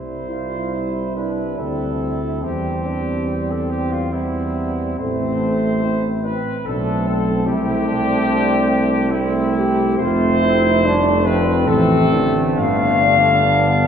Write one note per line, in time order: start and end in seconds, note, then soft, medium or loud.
0.00 1.54 C2 medium
0.00 2.27 G3 medium
0.00 0.26 E4 medium
0.00 2.44 E4 medium
0.00 1.11 C5 medium
0.30 0.72 F4 medium
0.72 1.15 E4 medium
1.15 1.58 D4 medium
1.15 1.58 B4 medium
1.58 2.44 D2 soft
1.58 2.43 C4 medium
1.58 2.41 A4 medium
2.42 4.98 E2 medium
2.42 4.08 G3 medium
2.42 4.10 C4 medium
2.42 2.85 C4 medium
2.42 3.49 G4 medium
2.86 3.28 D4 medium
3.28 4.11 C4 medium
3.50 3.70 A4 medium
3.70 3.90 G4 medium
3.90 4.11 F4 medium
4.10 5.01 G3 medium
4.10 5.00 B3 medium
4.10 4.98 C4 medium
4.10 5.00 E4 medium
4.99 6.35 A1 medium
4.99 5.82 A3 medium
4.99 6.39 A3 medium
4.99 6.36 C4 medium
4.99 6.07 C5 medium
5.83 6.24 E4 medium
6.24 6.54 C4 medium
6.24 6.64 B4 medium
6.65 7.47 B1 medium
6.65 7.43 A3 medium
6.65 7.43 C4 medium
6.65 7.06 D4 medium
6.65 7.46 A4 medium
7.07 7.47 C4 medium
7.45 9.99 C2 medium
7.45 9.08 A3 medium
7.45 9.07 C4 medium
7.45 7.88 E4 medium
7.45 9.08 G4 loud
7.88 9.12 D4 medium
9.10 9.97 A3 medium
9.10 9.98 C4 medium
9.10 9.55 C4 medium
9.10 9.99 E4 loud
9.56 9.99 G4 medium
9.97 11.70 F1 medium
9.97 10.86 A3 medium
9.97 10.86 C4 medium
9.97 10.43 F4 medium
9.97 11.22 C5 loud
10.43 10.84 E4 medium
10.84 11.27 G3 medium
10.84 11.67 A3 medium
10.84 11.26 D4 medium
11.25 11.69 F3 medium
11.25 12.59 C4 medium
11.25 11.68 B4 loud
11.66 12.60 A1 medium
11.66 12.14 E3 medium
11.66 13.47 A3 medium
11.66 12.40 A4 loud
12.13 13.87 D3 medium
12.57 13.87 G1 medium
12.57 13.04 B3 medium
12.57 13.84 F5 loud
13.04 13.87 D4 loud
13.45 13.87 B3 medium